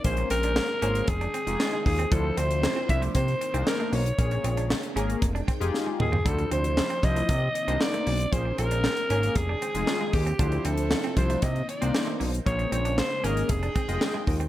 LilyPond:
<<
  \new Staff \with { instrumentName = "Alto saxophone" } { \time 4/4 \key bes \major \tempo 4 = 116 c''8 bes'4. aes'4. aes'8 | a'8 c''4 e''8 c''4 bes'8 cis''8~ | cis''4 r2 r8 aes'8 | a'8 c''4 ees''4. d''4 |
c''8 bes'4. aes'4. g'8~ | g'8 a'4 c''8 ees''8 d''4 r8 | des''8 des''8 c''8 bes'8 aes'4. r8 | }
  \new Staff \with { instrumentName = "Analog polysynth" } { \time 4/4 \key bes \major <bes des' aes' c''>4~ <bes des' aes' c''>16 r16 <bes des' aes' c''>8 r8. <aes ees' f' g' aes'>4 r16 | <f d' e' c''>4~ <f d' e' c''>16 r16 <f d' e' c''>8 r8. <bes d' ees' c''>4 r16 | <bes des' aes' des''>4~ <bes des' aes' des''>16 r16 <bes des' aes' bes'>8 r8. <ees' f' g' aes'>4 r16 | <f d' e' c''>4~ <f d' e' c''>16 r16 <f d' e' c''>8 r8. <bes d' ees' c''>4 r16 |
<bes des' aes' c''>4~ <bes des' aes' c''>16 r16 <bes des' aes' bes'>8 r8. <aes ees' f' aes'>4 r16 | <f d' e' c''>4~ <f d' e' c''>16 r16 <f d' e' c''>8 r8. <bes d' ees' c''>4 r16 | <bes des' aes' c''>4~ <bes des' aes' c''>16 r16 <bes des' aes' ees''>8 r8. <aes f' ees'' g''>4 r16 | }
  \new Staff \with { instrumentName = "Clean electric guitar" } { \time 4/4 \key bes \major r8 c'16 d'16 r8 des'16 r8 d'16 c'16 r8 aes16 r16 c'16 | d'16 r16 c'16 r8 c'16 r16 a16 bes16 r8 c'16 r16 a16 bes16 r16 | r8 c'16 d'16 r8 des'16 r8 d'16 c'16 r8 aes16 r16 c'16 | d'16 r16 c'16 r8 c'16 r16 a16 bes16 r8 c'16 r16 a16 bes16 r16 |
r8 c'16 d'16 r8 des'16 r8 d'16 c'16 r8 aes16 r16 c'16 | d'16 r16 c'16 r8 c'16 r16 a16 bes16 r8 c'16 r16 a16 bes16 r16 | r8 c'16 d'16 r8 des'16 r8 d'16 c'16 r8 aes16 r16 c'16 | }
  \new Staff \with { instrumentName = "String machine" } { \clef bass \time 4/4 \key bes \major << { <des des'>2 <ees g''>2 | <c e'>2 <ees c'>2 | <des des'>2 <ees g''>2 | <c e'>2 <ees c'>2 |
<des des'>2 <ees g''>2 | <c e'>2 <ees c'>2 | <des des'>2 <ees g''>2 | } \\ { aes1 | f2 bes2 | aes1 | f2 bes2 |
aes2 aes2 | f2 bes2 | aes1 | } >> }
  \new Staff \with { instrumentName = "Analog synth bass" } { \clef bass \time 4/4 \key bes \major bes,,8 bes,,8. r16 aes,,8 f,,8 r16 f,,16 r8 ees,8 | d,8 d,8. r16 c,8 c8 r16 c,16 r8 b,,8 | bes,,8 bes,,8. r16 aes,,8 f,,8 r16 f,,16 r8 ees,8 | d,8 d,8. r16 c,8 c8 r16 c,16 r8 b,,8 |
bes,,8 bes,,8. r16 aes,,8 f,,8 r16 f,,16 r8 ees,8 | d,8 d,8. r16 c,8 c8 r16 c,16 r8 b,,8 | bes,,8 bes,,8. r16 aes,,8 f,,8 r16 f,,16 r8 ees,8 | }
  \new DrumStaff \with { instrumentName = "Drums" } \drummode { \time 4/4 <hh bd>16 hh16 hh16 hh16 <hc sn>8 hh16 hh16 <hh bd>16 hh16 hh16 hh16 <hc sn>8 <hho bd>16 hh16 | <hh bd>8 hh16 hh16 <hc sn>8 <hh bd>16 hh16 <hh bd>16 hh16 hh16 hh16 <hc sn>8 hho16 hh16 | <hh bd>16 hh16 hh16 hh16 <hc sn>16 hh16 hh16 hh16 <hh bd>16 hh16 <hh bd>16 hh16 sn8 toml16 tomfh16 | <hh bd>16 hh16 hh16 hh16 <hc sn>16 hh16 <hh bd>16 hh16 <hh bd>8 hh16 hh16 <hc sn>16 hh16 hho16 hh16 |
<hh bd>8 hh16 hh16 <hc sn>16 hh16 hh16 hh16 <hh bd>8 hh16 hh16 <hc sn>8 <hho bd>16 hh16 | <hh bd>16 hh16 hh16 hh16 <hc sn>16 hh16 <hh bd>16 hh16 <hh bd>16 hh16 hh16 hh16 <hc sn>8 hho16 hh16 | <hh bd>16 hh16 hh16 hh16 <hc sn>8 hh16 hh16 <hh bd>16 hh16 <hh bd>16 hh16 <hc sn>8 <hho bd>16 hh16 | }
>>